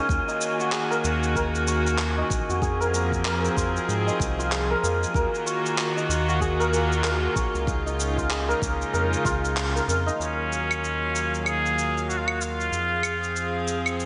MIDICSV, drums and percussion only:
0, 0, Header, 1, 2, 480
1, 0, Start_track
1, 0, Tempo, 631579
1, 70, Time_signature, 4, 2, 24, 8
1, 10683, End_track
2, 0, Start_track
2, 0, Title_t, "Drums"
2, 69, Note_on_c, 9, 36, 119
2, 77, Note_on_c, 9, 82, 41
2, 145, Note_off_c, 9, 36, 0
2, 153, Note_off_c, 9, 82, 0
2, 217, Note_on_c, 9, 82, 31
2, 293, Note_off_c, 9, 82, 0
2, 312, Note_on_c, 9, 82, 77
2, 388, Note_off_c, 9, 82, 0
2, 456, Note_on_c, 9, 82, 33
2, 532, Note_off_c, 9, 82, 0
2, 547, Note_on_c, 9, 39, 93
2, 555, Note_on_c, 9, 82, 42
2, 623, Note_off_c, 9, 39, 0
2, 631, Note_off_c, 9, 82, 0
2, 698, Note_on_c, 9, 82, 31
2, 774, Note_off_c, 9, 82, 0
2, 794, Note_on_c, 9, 82, 79
2, 870, Note_off_c, 9, 82, 0
2, 938, Note_on_c, 9, 82, 30
2, 1014, Note_off_c, 9, 82, 0
2, 1029, Note_on_c, 9, 36, 57
2, 1035, Note_on_c, 9, 82, 43
2, 1105, Note_off_c, 9, 36, 0
2, 1111, Note_off_c, 9, 82, 0
2, 1180, Note_on_c, 9, 82, 31
2, 1256, Note_off_c, 9, 82, 0
2, 1274, Note_on_c, 9, 82, 80
2, 1350, Note_off_c, 9, 82, 0
2, 1418, Note_on_c, 9, 82, 31
2, 1494, Note_off_c, 9, 82, 0
2, 1507, Note_on_c, 9, 39, 103
2, 1514, Note_on_c, 9, 82, 45
2, 1583, Note_off_c, 9, 39, 0
2, 1590, Note_off_c, 9, 82, 0
2, 1749, Note_on_c, 9, 36, 107
2, 1756, Note_on_c, 9, 82, 73
2, 1825, Note_off_c, 9, 36, 0
2, 1832, Note_off_c, 9, 82, 0
2, 1900, Note_on_c, 9, 82, 31
2, 1976, Note_off_c, 9, 82, 0
2, 1990, Note_on_c, 9, 36, 120
2, 1997, Note_on_c, 9, 82, 39
2, 2066, Note_off_c, 9, 36, 0
2, 2073, Note_off_c, 9, 82, 0
2, 2141, Note_on_c, 9, 82, 29
2, 2217, Note_off_c, 9, 82, 0
2, 2237, Note_on_c, 9, 82, 74
2, 2313, Note_off_c, 9, 82, 0
2, 2373, Note_on_c, 9, 36, 55
2, 2380, Note_on_c, 9, 82, 31
2, 2449, Note_off_c, 9, 36, 0
2, 2456, Note_off_c, 9, 82, 0
2, 2470, Note_on_c, 9, 39, 99
2, 2477, Note_on_c, 9, 82, 41
2, 2546, Note_off_c, 9, 39, 0
2, 2553, Note_off_c, 9, 82, 0
2, 2620, Note_on_c, 9, 82, 29
2, 2696, Note_off_c, 9, 82, 0
2, 2710, Note_on_c, 9, 36, 99
2, 2718, Note_on_c, 9, 82, 76
2, 2786, Note_off_c, 9, 36, 0
2, 2794, Note_off_c, 9, 82, 0
2, 2861, Note_on_c, 9, 82, 31
2, 2937, Note_off_c, 9, 82, 0
2, 2960, Note_on_c, 9, 82, 40
2, 3036, Note_off_c, 9, 82, 0
2, 3102, Note_on_c, 9, 82, 29
2, 3178, Note_off_c, 9, 82, 0
2, 3190, Note_on_c, 9, 36, 95
2, 3201, Note_on_c, 9, 82, 70
2, 3266, Note_off_c, 9, 36, 0
2, 3277, Note_off_c, 9, 82, 0
2, 3345, Note_on_c, 9, 82, 29
2, 3421, Note_off_c, 9, 82, 0
2, 3435, Note_on_c, 9, 39, 96
2, 3442, Note_on_c, 9, 82, 44
2, 3511, Note_off_c, 9, 39, 0
2, 3518, Note_off_c, 9, 82, 0
2, 3681, Note_on_c, 9, 82, 69
2, 3757, Note_off_c, 9, 82, 0
2, 3825, Note_on_c, 9, 82, 31
2, 3901, Note_off_c, 9, 82, 0
2, 3909, Note_on_c, 9, 36, 119
2, 3920, Note_on_c, 9, 82, 37
2, 3985, Note_off_c, 9, 36, 0
2, 3996, Note_off_c, 9, 82, 0
2, 4063, Note_on_c, 9, 82, 27
2, 4139, Note_off_c, 9, 82, 0
2, 4157, Note_on_c, 9, 82, 75
2, 4233, Note_off_c, 9, 82, 0
2, 4302, Note_on_c, 9, 82, 31
2, 4378, Note_off_c, 9, 82, 0
2, 4394, Note_on_c, 9, 39, 98
2, 4401, Note_on_c, 9, 82, 42
2, 4470, Note_off_c, 9, 39, 0
2, 4477, Note_off_c, 9, 82, 0
2, 4542, Note_on_c, 9, 82, 29
2, 4618, Note_off_c, 9, 82, 0
2, 4640, Note_on_c, 9, 82, 70
2, 4716, Note_off_c, 9, 82, 0
2, 4781, Note_on_c, 9, 82, 31
2, 4857, Note_off_c, 9, 82, 0
2, 4870, Note_on_c, 9, 36, 54
2, 4878, Note_on_c, 9, 82, 42
2, 4946, Note_off_c, 9, 36, 0
2, 4954, Note_off_c, 9, 82, 0
2, 5021, Note_on_c, 9, 82, 27
2, 5097, Note_off_c, 9, 82, 0
2, 5119, Note_on_c, 9, 82, 74
2, 5195, Note_off_c, 9, 82, 0
2, 5261, Note_on_c, 9, 82, 30
2, 5337, Note_off_c, 9, 82, 0
2, 5350, Note_on_c, 9, 39, 102
2, 5358, Note_on_c, 9, 82, 43
2, 5426, Note_off_c, 9, 39, 0
2, 5434, Note_off_c, 9, 82, 0
2, 5591, Note_on_c, 9, 36, 103
2, 5596, Note_on_c, 9, 82, 71
2, 5667, Note_off_c, 9, 36, 0
2, 5672, Note_off_c, 9, 82, 0
2, 5739, Note_on_c, 9, 82, 28
2, 5815, Note_off_c, 9, 82, 0
2, 5831, Note_on_c, 9, 36, 115
2, 5838, Note_on_c, 9, 82, 38
2, 5907, Note_off_c, 9, 36, 0
2, 5914, Note_off_c, 9, 82, 0
2, 5983, Note_on_c, 9, 82, 27
2, 6059, Note_off_c, 9, 82, 0
2, 6079, Note_on_c, 9, 82, 76
2, 6155, Note_off_c, 9, 82, 0
2, 6213, Note_on_c, 9, 36, 54
2, 6222, Note_on_c, 9, 82, 31
2, 6289, Note_off_c, 9, 36, 0
2, 6298, Note_off_c, 9, 82, 0
2, 6311, Note_on_c, 9, 39, 101
2, 6318, Note_on_c, 9, 82, 41
2, 6387, Note_off_c, 9, 39, 0
2, 6394, Note_off_c, 9, 82, 0
2, 6463, Note_on_c, 9, 82, 27
2, 6539, Note_off_c, 9, 82, 0
2, 6549, Note_on_c, 9, 36, 99
2, 6558, Note_on_c, 9, 82, 72
2, 6625, Note_off_c, 9, 36, 0
2, 6634, Note_off_c, 9, 82, 0
2, 6700, Note_on_c, 9, 82, 29
2, 6776, Note_off_c, 9, 82, 0
2, 6797, Note_on_c, 9, 82, 41
2, 6873, Note_off_c, 9, 82, 0
2, 6940, Note_on_c, 9, 82, 29
2, 7016, Note_off_c, 9, 82, 0
2, 7029, Note_on_c, 9, 36, 95
2, 7036, Note_on_c, 9, 82, 71
2, 7105, Note_off_c, 9, 36, 0
2, 7112, Note_off_c, 9, 82, 0
2, 7181, Note_on_c, 9, 82, 30
2, 7257, Note_off_c, 9, 82, 0
2, 7271, Note_on_c, 9, 39, 102
2, 7278, Note_on_c, 9, 82, 46
2, 7347, Note_off_c, 9, 39, 0
2, 7354, Note_off_c, 9, 82, 0
2, 7423, Note_on_c, 9, 82, 30
2, 7499, Note_off_c, 9, 82, 0
2, 7520, Note_on_c, 9, 82, 72
2, 7596, Note_off_c, 9, 82, 0
2, 7662, Note_on_c, 9, 82, 30
2, 7738, Note_off_c, 9, 82, 0
2, 7760, Note_on_c, 9, 82, 37
2, 7836, Note_off_c, 9, 82, 0
2, 7999, Note_on_c, 9, 82, 63
2, 8075, Note_off_c, 9, 82, 0
2, 8138, Note_on_c, 9, 75, 64
2, 8145, Note_on_c, 9, 82, 28
2, 8214, Note_off_c, 9, 75, 0
2, 8221, Note_off_c, 9, 82, 0
2, 8240, Note_on_c, 9, 82, 40
2, 8316, Note_off_c, 9, 82, 0
2, 8478, Note_on_c, 9, 82, 64
2, 8554, Note_off_c, 9, 82, 0
2, 8621, Note_on_c, 9, 82, 28
2, 8697, Note_off_c, 9, 82, 0
2, 8711, Note_on_c, 9, 75, 66
2, 8718, Note_on_c, 9, 82, 35
2, 8787, Note_off_c, 9, 75, 0
2, 8794, Note_off_c, 9, 82, 0
2, 8860, Note_on_c, 9, 82, 27
2, 8936, Note_off_c, 9, 82, 0
2, 8957, Note_on_c, 9, 82, 66
2, 9033, Note_off_c, 9, 82, 0
2, 9101, Note_on_c, 9, 82, 25
2, 9177, Note_off_c, 9, 82, 0
2, 9197, Note_on_c, 9, 82, 41
2, 9273, Note_off_c, 9, 82, 0
2, 9331, Note_on_c, 9, 75, 69
2, 9407, Note_off_c, 9, 75, 0
2, 9433, Note_on_c, 9, 82, 63
2, 9509, Note_off_c, 9, 82, 0
2, 9579, Note_on_c, 9, 82, 27
2, 9655, Note_off_c, 9, 82, 0
2, 9675, Note_on_c, 9, 82, 37
2, 9751, Note_off_c, 9, 82, 0
2, 9905, Note_on_c, 9, 75, 65
2, 9912, Note_on_c, 9, 82, 73
2, 9981, Note_off_c, 9, 75, 0
2, 9988, Note_off_c, 9, 82, 0
2, 10059, Note_on_c, 9, 82, 29
2, 10135, Note_off_c, 9, 82, 0
2, 10156, Note_on_c, 9, 82, 41
2, 10232, Note_off_c, 9, 82, 0
2, 10395, Note_on_c, 9, 82, 68
2, 10471, Note_off_c, 9, 82, 0
2, 10533, Note_on_c, 9, 75, 61
2, 10540, Note_on_c, 9, 82, 31
2, 10609, Note_off_c, 9, 75, 0
2, 10616, Note_off_c, 9, 82, 0
2, 10639, Note_on_c, 9, 82, 38
2, 10683, Note_off_c, 9, 82, 0
2, 10683, End_track
0, 0, End_of_file